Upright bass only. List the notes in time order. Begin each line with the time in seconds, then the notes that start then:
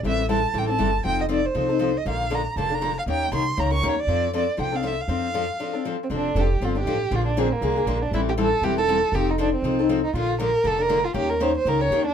0.03 A1
0.54 A1
0.79 G1
1.05 F1
1.55 C2
2.06 A#1
2.56 F1
3.06 D#2
3.32 C2
3.58 C#2
3.82 D#2
4.07 F2
4.58 C2
5.08 F2
6.10 F1
6.35 F1
6.61 G1
6.86 A1
7.11 A#1
7.61 C2
7.86 A#1
8.11 A1
8.61 E1
9.12 F1
9.62 C2
10.14 A#1
10.64 F1
11.14 D#2
11.65 C#2
11.90 D#2